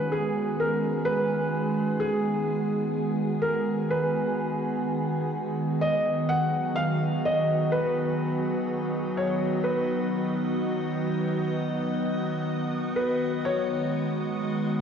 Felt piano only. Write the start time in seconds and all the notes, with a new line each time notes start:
Already playing: B4
0.12 G#4
0.59 A#4
1.05 B4
2.00 G#4
3.42 A#4
3.90 B4
5.81 D#5
6.29 F#5
6.76 F5
7.25 D#5
7.72 B4
9.17 C#5
9.64 B4
12.96 B4
13.45 C#5